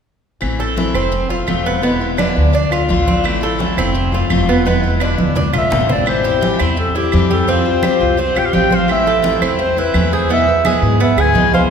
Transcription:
0.41 A1 E3 A3 C4 E4, high conga, claves
0.59 A3 C4 E4 A4, high conga
0.76 E3 A3 C4 E4, high conga
0.94 F1 A3 C4 E4, high conga, claves
1.12 muted steel-string acoustic guitar stroke, high conga
1.29 A3 C4 F4, high conga
1.47 E1 C3 F3 A3 C4 F4, high conga, claves
1.66 B3
1.82 B2 D3 G#3 B3 E4, high conga
2.00 G#3 B3 E4, high conga
2.17 B2 D3 G#3 B3 D4 E4, high conga, claves
2.35 D2 G#3 B3 E4, high conga
2.53 D4, muted steel-string acoustic guitar stroke, high conga
2.71 A3 D4 F4, high conga, claves
2.88 A1 D3 A3 D4 F4, high conga
3.07 C4, high conga
3.24 E3 A3 C4 E4, high conga, claves
3.41 A3 C4 E4 A4, high conga
3.58 E3 A3 C4 E4, high conga
3.77 F1 A3 C4 E4, high conga, claves
3.94 muted steel-string acoustic guitar stroke, high conga
4.12 A3 C4 F4, high conga
4.30 E1 C3 F3 A3 C4 F4, high conga, claves
4.49 B3
4.66 B2 D3 G#3 B3 E4, high conga
4.82 G#3 B3 E4
5.00 B2 D3 G#3 B3 D4 E4, claves
5.18 D2 G#3 B3 E4, high conga
5.35 D4, muted steel-string acoustic guitar stroke, low conga
5.52 B1 A3 D4 F4, low conga, claves
5.58 E5
5.70 A1 D3 A3 D4 F4, low conga
5.89 C4 D5, low conga
6.06 E3 G3 C4 E4 C5, high conga, claves
6.24 G3 C4 E4 G4, high conga
6.41 E3 G3 C4 E4, high conga
6.59 E2 G3 C4 E4, high conga, claves
6.77 A4, muted steel-string acoustic guitar stroke, high conga
6.95 G3 C4 E4 G4, high conga
7.12 F2 E3 G3 C4 E4, high conga, claves
7.31 G4 A4
7.47 F3 G3 C4 F4 C5, high conga
7.65 G3 C4 F4, high conga
7.83 F3 G3 C4 F4 G4, high conga, claves
8.00 C2 G3 C4 F4, high conga
8.17 C4 C5, muted steel-string acoustic guitar stroke, high conga
8.34 B1 G3 C4 F4 G4, high conga, claves
8.39 G5
8.45 F5
8.53 A1 F3 G3 C4 F4 G5, high conga
8.71 C5, high conga
8.75 F5
8.88 E3 A3 C4 E4 E5, high conga, claves
9.05 A3 C4 E4 A4, high conga
9.22 E3 A3 C4 E4, high conga
9.41 E2 A3 C4 E4, high conga, claves
9.59 C5, muted steel-string acoustic guitar stroke, high conga
9.76 A3 C4 E4 B4, high conga
9.94 E2 E3 A3 C4 E4, high conga, claves
10.13 G#4 C5
10.29 B2 E3 G#3 B3 E4 E5, high conga
10.47 G#3 B3 E4, high conga
10.65 B2 E3 G#3 B3 E4 G#4, high conga, claves
10.82 G#2 G#3 B3 E4, high conga
11.00 B3 E5, muted steel-string acoustic guitar stroke
11.17 D2 G#3 B3 E4 G#4, high conga, claves
11.21 G#5
11.34 C2 B2 E3 G#3 B3 E4, high conga
11.54 C5 F5, high conga

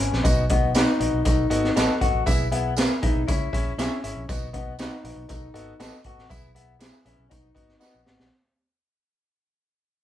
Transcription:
Already playing: C#4
0.00 B4 G#5
0.13 A#1, snare
0.24 B1 B3 D#4 F#4 D#5, kick, closed hi-hat, tambourine
0.49 B3 D#4 F#4 D#5, kick, closed hi-hat
0.75 B3 D#4 F#4 B4 D#5, snare, closed hi-hat, tambourine
1.00 A#1 B3 D#4 F#4 D#5, closed hi-hat
1.13 B1
1.25 B1 B3 D#4 F#4 A4 D#5, kick, closed hi-hat, tambourine
1.50 G#1 B3 F#4 A4 D#5, closed hi-hat
1.64 snare
1.76 A1 B3 D#4 F#4 A4 B4 D#5, snare, closed hi-hat, tambourine
2.01 G#1 B3 F#4 A4 D#5, kick, closed hi-hat
2.13 A1
2.26 B1 B3 E4 G#4 E5, kick, closed hi-hat, tambourine
2.52 B3 E4 G#4 E5, closed hi-hat
2.76 B3 E4 G#4 A#4 B4, snare, closed hi-hat, tambourine
3.02 A#1 B3 D#4 E4 G#4 E5, kick, closed hi-hat
3.16 B1
3.27 C#2 C#4 E4 G#4 E5, kick, closed hi-hat, tambourine
3.53 A#1 C#4 E4 G#4 E5, kick, closed hi-hat
3.77 B1 C#4 E4 G#4 C#5 E5, snare, closed hi-hat, tambourine
4.04 G#1 C#4 E4 G#4 E5, closed hi-hat
4.16 A#1
4.29 B1 B3 D#4 F#4 D#5, kick, closed hi-hat, tambourine
4.53 B3 D#4 F#4 D#5, kick, closed hi-hat
4.79 B3 D#4 F#4 B4 D#5, snare, closed hi-hat, tambourine
5.04 A#1 B3 D#4 F#4 D#5, closed hi-hat
5.16 B1
5.29 B1 B3 D#4 F#4 A4 D#5, kick, closed hi-hat, tambourine
5.54 G#1 B3 F#4 A4 D#5, closed hi-hat
5.79 A1 B3 D#4 F#4 A4 B4 D#5, snare, closed hi-hat, tambourine
6.04 G#1 B3 F#4 A4 D#5, kick, closed hi-hat
6.18 A1, snare
6.29 B1 B3 E4 G#4 E5, kick, closed hi-hat, tambourine
6.55 B3 E4 G#4 E5, closed hi-hat
6.79 B3 E4 G#4 B4 E5, snare, closed hi-hat, tambourine
7.05 A#1 B3 C#4 E4 G#4 E5, closed hi-hat
7.19 B1
7.29 B1 B3 D#4 F#4 D#5, kick, closed hi-hat, tambourine
7.55 G#1 B3 D#4 F#4 D#5, kick, closed hi-hat
7.68 snare
7.79 B3 D#4 F#4 B4 D#5, snare, tambourine
7.94 A#1
8.05 G#1 B3 D#4 F#4 D#5, snare
8.19 A#1, snare

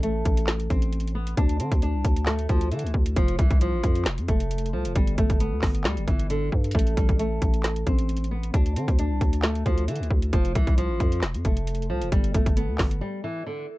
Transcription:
Already playing: A1
0.03 A3, closed hi-hat
0.25 A1, kick, closed hi-hat
0.37 closed hi-hat
0.47 snare, clap, closed hi-hat
0.60 closed hi-hat
0.70 A1 C4, kick, closed hi-hat
0.82 closed hi-hat
0.93 closed hi-hat
1.00 closed hi-hat
1.07 closed hi-hat
1.15 B3
1.27 closed hi-hat
1.37 D2 D4, kick, closed hi-hat
1.49 closed hi-hat
1.60 D3 C4, closed hi-hat
1.72 D2, kick, closed hi-hat
1.82 D4, closed hi-hat
1.94 C2
2.04 D2, kick, closed hi-hat
2.16 closed hi-hat
2.26 A3, snare, clap, closed hi-hat
2.39 closed hi-hat
2.49 D2 F3, kick, closed hi-hat
2.61 closed hi-hat
2.72 D3 E3, closed hi-hat
2.79 closed hi-hat
2.84 D2, closed hi-hat
2.94 D2, kick
3.06 closed hi-hat
3.16 F1 F3, kick, closed hi-hat
3.28 closed hi-hat
3.39 C2 E3, kick, closed hi-hat
3.51 kick, closed hi-hat
3.61 F3, closed hi-hat
3.73 A1
3.84 F2, kick, closed hi-hat
3.95 closed hi-hat
4.05 E1, snare, clap, closed hi-hat
4.18 F2, closed hi-hat
4.28 F1 A3, kick, closed hi-hat
4.40 closed hi-hat
4.51 closed hi-hat
4.58 closed hi-hat
4.66 closed hi-hat
4.73 C2 F3
4.85 F1, closed hi-hat
4.96 G1 G3, kick, closed hi-hat
5.07 closed hi-hat
5.18 G1 A3, kick, closed hi-hat
5.30 kick, closed hi-hat
5.40 B3, closed hi-hat
5.52 D2
5.62 G1, kick, snare, clap, open hi-hat
5.75 closed hi-hat
5.84 D2 G3, snare, clap, closed hi-hat
5.97 G1, closed hi-hat
6.08 G1 E3, kick, closed hi-hat
6.19 closed hi-hat
6.30 D3, closed hi-hat
6.52 G2, kick
6.64 closed hi-hat
6.71 A1 A3, kick, closed hi-hat
6.79 closed hi-hat
6.87 closed hi-hat
6.97 A1 G3, kick, closed hi-hat
7.09 kick, closed hi-hat
7.19 A3, closed hi-hat
7.42 A1, kick, closed hi-hat
7.54 closed hi-hat
7.63 snare, clap, closed hi-hat
7.76 closed hi-hat
7.86 A1 C4, kick, closed hi-hat
7.99 closed hi-hat
8.09 closed hi-hat
8.17 closed hi-hat
8.24 closed hi-hat
8.31 B3
8.43 closed hi-hat
8.54 D2 D4, kick, closed hi-hat
8.66 closed hi-hat
8.76 D3 C4, closed hi-hat
8.88 D2, kick, closed hi-hat
8.99 D4, closed hi-hat
9.11 C2
9.21 D2, kick, closed hi-hat
9.33 closed hi-hat
9.43 A3, snare, clap, closed hi-hat
9.55 closed hi-hat
9.66 D2 F3, kick, closed hi-hat
9.78 closed hi-hat
9.88 D3 E3, closed hi-hat
9.96 closed hi-hat
10.00 D2, closed hi-hat
10.10 D2, kick
10.22 closed hi-hat
10.33 F1 F3, kick, closed hi-hat
10.45 closed hi-hat
10.55 C2 E3, kick, closed hi-hat
10.67 kick, closed hi-hat
10.78 F3, closed hi-hat
10.90 A1
11.00 F2, kick, closed hi-hat
11.12 closed hi-hat
11.22 E1, snare, clap, closed hi-hat
11.34 F2, closed hi-hat
11.45 F1 A3, kick, closed hi-hat
11.57 closed hi-hat
11.67 closed hi-hat
11.75 closed hi-hat
11.82 closed hi-hat
11.90 C2 F3
12.01 F1, closed hi-hat
12.12 G1 G3, kick, closed hi-hat
12.24 closed hi-hat
12.34 G1 A3, kick, closed hi-hat
12.46 kick, closed hi-hat
12.57 B3, closed hi-hat
12.69 D2
12.78 G1, kick, snare, clap, open hi-hat
12.91 closed hi-hat
13.01 G3
13.24 E3
13.46 D3

